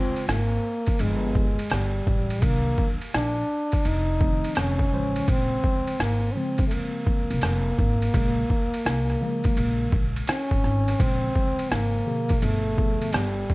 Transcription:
0.00 0.38 C#3 medium
0.00 0.37 G#3 medium
0.00 0.28 C4 medium
0.00 0.37 C4 medium
0.00 0.38 F4 medium
0.16 ride medium
0.28 0.56 G#1 medium
0.28 1.02 A#3 medium
0.28 cross-stick medium
0.28 hi-hat pedal soft
0.28 ride medium
0.86 kick medium
0.86 ride soft
0.99 1.55 G1 loud
0.99 1.44 F3 medium
0.99 1.45 G#3 medium
0.99 1.74 G#3 medium
0.99 1.45 B3 medium
0.99 1.46 D4 medium
0.99 ride medium
1.35 kick medium
1.59 ride medium
1.70 1.99 G1 medium
1.70 2.46 G3 medium
1.70 cross-stick loud
1.70 hi-hat pedal soft
1.70 ride medium
2.07 2.42 A1 medium
2.07 kick medium
2.30 ride medium
2.42 2.70 C2 medium
2.42 2.97 D#3 medium
2.42 2.97 F#3 soft
2.42 2.97 A#3 medium
2.42 2.90 A#3 loud
2.42 2.97 D4 medium
2.42 kick loud
2.42 ride medium
2.78 kick medium
3.02 ride medium
3.14 3.41 A#1 medium
3.14 3.88 D4 loud
3.14 cross-stick loud
3.14 hi-hat pedal soft
3.14 ride medium
3.72 kick medium
3.72 ride medium
3.85 4.40 F1 medium
3.85 4.59 D#4 loud
3.85 ride medium
4.20 4.75 D#3 medium
4.20 4.76 F3 medium
4.20 4.76 A3 medium
4.20 4.76 C4 medium
4.20 kick medium
4.44 ride medium
4.55 4.85 F1 loud
4.55 5.31 C#4 medium
4.55 cross-stick loud
4.55 hi-hat pedal soft
4.55 ride medium
4.79 kick medium
4.92 5.20 A1 medium
4.92 5.94 C#3 medium
4.92 5.95 F3 medium
4.92 5.95 G#3 medium
4.92 5.95 C5 medium
5.16 ride medium
5.28 5.56 A#1 medium
5.28 6.03 C4 loud
5.28 kick loud
5.28 ride medium
5.64 kick medium
5.87 ride medium
6.00 6.27 G#1 medium
6.00 6.34 A#3 medium
6.00 cross-stick medium
6.00 hi-hat pedal soft
6.00 ride medium
6.32 7.37 C#3 medium
6.32 7.38 F3 medium
6.32 6.38 C#4 medium
6.37 7.38 G#3 medium
6.37 6.67 C4 medium
6.37 7.38 C4 medium
6.58 kick medium
6.58 ride soft
6.67 6.75 A3 medium
6.67 ride medium
6.73 10.12 A#3 medium
7.07 kick medium
7.30 7.40 F1 medium
7.30 ride medium
7.41 7.70 F1 medium
7.41 cross-stick loud
7.41 hi-hat pedal soft
7.41 ride medium
7.78 8.06 G#1 medium
7.78 kick medium
8.02 ride medium
8.14 8.42 A#1 loud
8.14 8.42 C#3 medium
8.14 8.42 F3 medium
8.14 8.43 G#3 medium
8.14 8.43 A#3 medium
8.14 kick loud
8.14 ride medium
8.50 kick medium
8.74 ride medium
8.86 9.13 C2 medium
8.86 cross-stick loud
8.86 hi-hat pedal soft
8.86 ride medium
9.10 cross-stick soft
9.20 10.23 C#3 medium
9.20 10.23 F3 medium
9.20 10.24 G#3 medium
9.20 10.24 A#3 medium
9.44 kick loud
9.44 ride soft
9.57 9.85 A#1 medium
9.57 ride medium
9.92 10.20 A#1 medium
9.92 kick medium
10.16 ride medium
10.27 11.02 C#4 medium
10.27 cross-stick loud
10.27 hi-hat pedal medium
10.27 ride medium
10.51 10.61 G#1 medium
10.51 kick medium
10.64 10.91 G#1 medium
10.64 cross-stick soft
10.88 cross-stick soft
10.88 ride medium
10.99 11.27 A#1 loud
10.99 12.01 C#3 medium
10.99 12.02 F3 medium
10.99 12.02 G#3 medium
10.99 11.74 C4 loud
10.99 12.02 C4 medium
10.99 kick loud
10.99 ride medium
11.35 kick medium
11.59 ride medium
11.71 11.99 G#1 medium
11.71 12.44 A#3 medium
11.71 cross-stick medium
11.71 hi-hat pedal soft
11.71 ride medium
12.06 13.10 B2 medium
12.06 12.76 D3 medium
12.06 12.76 F3 medium
12.06 12.77 G#4 medium
12.29 kick loud
12.29 ride medium
12.42 12.98 G1 loud
12.42 13.16 A3 medium
12.42 ride medium
12.77 13.23 D3 medium
12.77 13.23 F3 medium
12.77 13.24 B3 medium
12.77 13.23 G#4 medium
12.77 kick medium
13.02 ride medium
13.13 13.41 G1 medium
13.13 13.54 G3 medium
13.13 cross-stick loud
13.13 hi-hat pedal soft
13.13 ride medium
13.50 13.54 A1 medium
13.50 kick medium

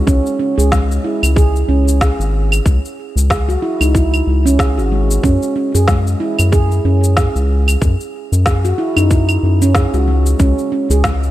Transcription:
0.07 0.21 C#2 loud
0.07 0.38 C#4 loud
0.07 kick loud
0.07 cabasa medium
0.26 cabasa soft
0.39 0.57 C#4 medium
0.58 0.99 C#2 medium
0.58 0.71 G#4 medium
0.58 cabasa medium
0.72 0.90 G#3 medium
0.72 kick loud
0.72 snare loud
0.72 cabasa medium
0.91 cabasa soft
1.04 1.22 E4 medium
1.23 1.64 C#2 medium
1.23 cabasa medium
1.23 claves medium
1.36 1.67 G#4 medium
1.36 kick loud
1.36 cabasa medium
1.56 cabasa soft
1.68 2.12 C#2 medium
1.68 1.86 C#4 medium
1.88 cabasa medium
2.01 2.64 G#4 medium
2.01 kick loud
2.01 snare medium
2.01 cabasa medium
2.19 2.60 G#1 medium
2.19 cabasa soft
2.52 cabasa medium
2.52 claves medium
2.66 2.80 C#2 medium
2.66 kick loud
2.66 cabasa medium
2.85 cabasa soft
3.16 3.57 C#2 medium
3.16 cabasa medium
3.30 3.47 G#4 medium
3.30 kick loud
3.30 snare medium
3.30 cabasa medium
3.49 3.62 F#4 medium
3.49 cabasa soft
3.62 3.79 E4 medium
3.81 4.22 C#2 medium
3.81 3.93 D#4 medium
3.81 cabasa medium
3.81 claves medium
3.95 4.44 E4 medium
3.95 kick loud
3.95 cabasa medium
4.14 cabasa soft
4.14 claves medium
4.27 4.79 C#2 medium
4.46 4.59 C#4 medium
4.46 cabasa medium
4.59 4.76 G#4 medium
4.59 kick loud
4.59 snare medium
4.59 cabasa medium
4.78 5.19 G#1 medium
4.78 4.86 F#4 medium
4.78 cabasa soft
4.92 5.02 G#3 medium
5.11 cabasa medium
5.23 5.38 F#2 loud
5.23 5.54 C#4 medium
5.23 kick loud
5.23 cabasa medium
5.43 cabasa soft
5.56 5.73 C#4 medium
5.75 6.15 F#2 medium
5.75 5.88 G#4 medium
5.75 cabasa medium
5.88 6.06 G#3 medium
5.88 kick loud
5.88 snare medium
5.88 cabasa soft
6.07 cabasa soft
6.20 6.38 E4 medium
6.39 6.80 F#2 medium
6.39 cabasa medium
6.39 claves medium
6.52 6.83 G#4 medium
6.52 kick loud
6.52 cabasa medium
6.72 cabasa soft
6.85 7.29 F#2 medium
6.85 7.03 C#4 medium
7.04 cabasa medium
7.17 7.80 G#4 medium
7.17 kick loud
7.17 snare medium
7.17 cabasa medium
7.35 7.76 C#2 medium
7.35 cabasa soft
7.68 cabasa medium
7.68 claves medium
7.82 7.96 F#2 loud
7.82 kick loud
7.82 cabasa medium
8.00 cabasa soft
8.32 8.73 F#2 medium
8.32 cabasa medium
8.46 8.63 G#4 medium
8.46 kick loud
8.46 snare medium
8.46 cabasa medium
8.65 8.78 F#4 medium
8.65 cabasa soft
8.78 8.95 E4 medium
8.96 9.38 F#2 medium
8.96 9.09 D#4 medium
8.96 cabasa medium
8.96 claves medium
9.11 9.60 E4 medium
9.11 kick medium
9.11 cabasa medium
9.29 cabasa soft
9.29 claves medium
9.43 9.87 F#2 medium
9.62 9.75 C#4 medium
9.62 cabasa medium
9.75 9.92 G#4 medium
9.75 kick loud
9.75 snare medium
9.75 cabasa soft
9.94 10.35 C#2 medium
9.94 10.02 F#4 medium
9.94 cabasa soft
10.08 10.18 G#3 medium
10.26 cabasa medium
10.40 10.54 C#2 loud
10.40 10.71 C#4 loud
10.40 kick medium
10.40 cabasa soft
10.59 cabasa soft
10.72 10.90 C#4 medium
10.90 11.31 C#2 medium
10.90 11.04 G#4 medium
10.90 cabasa medium
11.04 11.22 G#3 medium
11.04 kick loud
11.04 snare medium
11.04 cabasa soft
11.23 cabasa soft

